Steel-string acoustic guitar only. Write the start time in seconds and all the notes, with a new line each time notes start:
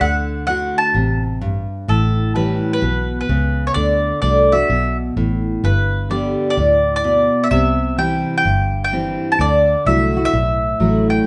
0.01 D3
0.47 D3 A3 D4 F#4
0.94 C3
1.41 G2
1.88 A2
2.35 E3 G3 C#4 E4
2.82 B2
3.29 C#3
3.76 D3
4.22 D3 A3 D4 F#4
4.53 D4 F#4
4.70 B2
5.17 A2
5.64 G2
6.10 D3 G3 B3 G4
6.57 A2
7.04 B2
7.51 C3
7.98 E3 G3 C4 E4
8.45 G2
8.91 E3 G3 C4 E4
9.40 D3
9.85 F#3 A3 E4 F#4
10.17 E4 F#4
10.33 A2
10.80 F#3 A3 E4 F#4